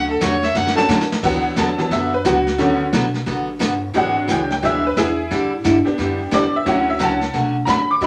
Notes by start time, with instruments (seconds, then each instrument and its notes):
Already playing: upright bass D2
0.10 fiddle A4
0.21 upright bass E2, steel-string acoustic guitar D3 F#3 A3 C#4 F#4, fiddle C#5, kick, snare, hi-hat pedal
0.43 fiddle E5, snare
0.55 upright bass F#2, steel-string acoustic guitar D3 F#3 A3 C#4 F#4, fiddle F#5, snare
0.67 snare
0.75 honky-tonk piano A3 C#4 D4 F#4 A4, fiddle A5, snare
0.88 upright bass A2, steel-string acoustic guitar D3 F#3 A3 C#4 F#4, snare, hi-hat pedal
1.01 snare
1.12 snare
1.23 upright bass D2, steel-string acoustic guitar D3 F#3 B3 F#4 A4, honky-tonk piano E3 F#3 B3 F#5, brush sweep, kick, snare, crash
1.56 upright bass E2, steel-string acoustic guitar D3 F#3 B3 F#4 A4, honky-tonk piano A5, kick, snare, hi-hat pedal
1.78 honky-tonk piano E3 F#3 B3 A5, snare
1.91 upright bass F#2, steel-string acoustic guitar D3 F#3 B3 F#4 A4, honky-tonk piano E5, brush sweep, kick, snare
2.14 honky-tonk piano B4
2.25 upright bass C#2, steel-string acoustic guitar D3 F#3 B3 F#4 A4, honky-tonk piano F#4, kick, snare, hi-hat pedal
2.47 snare
2.58 upright bass D2, steel-string acoustic guitar D3 F#3 B3 F#4 A4, honky-tonk piano D3 A3 C#4, brush sweep, kick, snare
2.93 upright bass B1, steel-string acoustic guitar D3 F#3 B3 F#4 A4, kick, snare, hi-hat pedal
3.14 snare
3.26 upright bass A1, steel-string acoustic guitar D3 F#3 B3 F#4 A4, brush sweep, kick, snare
3.59 upright bass G1, steel-string acoustic guitar D3 F#3 B3 F#4 A4, kick, snare, hi-hat pedal
3.94 upright bass G#1, steel-string acoustic guitar E3 B3 D4 G#4, honky-tonk piano F#3 G#3 D4 F#5, brush sweep, kick, snare
4.28 upright bass C#2, steel-string acoustic guitar E3 B3 D4 G#4, honky-tonk piano G5, kick, snare, hi-hat pedal
4.50 honky-tonk piano G5, snare
4.62 upright bass D2, steel-string acoustic guitar E3 B3 D4 G#4, honky-tonk piano F#3 G#3 D4 E5, brush sweep, kick, snare
4.87 honky-tonk piano B4
4.97 upright bass E2, steel-string acoustic guitar E3 B3 D4 G#4, honky-tonk piano E4 G#4, kick, snare, hi-hat pedal
5.31 upright bass A2, steel-string acoustic guitar D3 G3 D4 E4 A4, brush sweep, kick, snare
5.64 upright bass G2, steel-string acoustic guitar D3 G3 D4 E4 A4, kick, snare, hi-hat pedal
5.85 honky-tonk piano B3 D4 G4, muted upright bass stroke, snare
5.98 upright bass F#2, steel-string acoustic guitar D3 G3 D4 E4 A4, brush sweep, kick, snare
6.31 upright bass E2, steel-string acoustic guitar D3 G3 D4 E4 A4, honky-tonk piano D5, kick, snare, hi-hat pedal
6.53 honky-tonk piano E5, muted upright bass stroke
6.66 upright bass D2, steel-string acoustic guitar D3 F#3 A3 C#4 F#4, honky-tonk piano F#3 C#4 E4 F#5, brush sweep, kick, snare
6.90 honky-tonk piano E5
6.99 upright bass C#2, steel-string acoustic guitar D3 F#3 A3 C#4 F#4, honky-tonk piano F#5, kick, snare, hi-hat pedal
7.03 honky-tonk piano A5
7.21 snare
7.33 upright bass B1, steel-string acoustic guitar D3 F#3 A3 C#4 F#4, brush sweep, kick, snare
7.65 upright bass A1, steel-string acoustic guitar D3 F#3 A3 C#4 F#4, honky-tonk piano A#5, kick, snare, hi-hat pedal
7.70 honky-tonk piano B5
7.91 honky-tonk piano D6
8.01 upright bass E2, steel-string acoustic guitar E3 B3 D4 G#4, honky-tonk piano F#3 G#3 D4, brush sweep, kick, snare